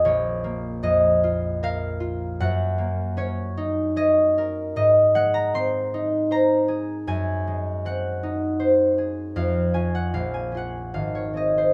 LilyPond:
\new Staff \with { instrumentName = "Harp" } { \time 3/4 \key aes \mixolydian \tempo 4 = 77 << { <des'' ees''>4 ees''4 f''4 | ges''4 des''4 ees''4 | ees''8 ges''16 bes''16 c'''4 bes''4 | aes''4 ges''2 |
f''8 aes''16 ges''16 f''16 aes''16 ges''8 f''16 des''16 ees''16 c''16 | } \\ { <bes,, f'>8 bes8 f,8 f'8 bes'8 f'8 | ges,8 bes8 des'8 ees'8 des'8 bes'8 | aes,8 aes8 c'8 ees'8 c''8 aes'8 | ges,8 aes8 c'8 ees'8 c''8 aes'8 |
f,8 <des' f'>8 bes,,8 <des' f'>8 aes,,8 <c' aes'>8 | } >> }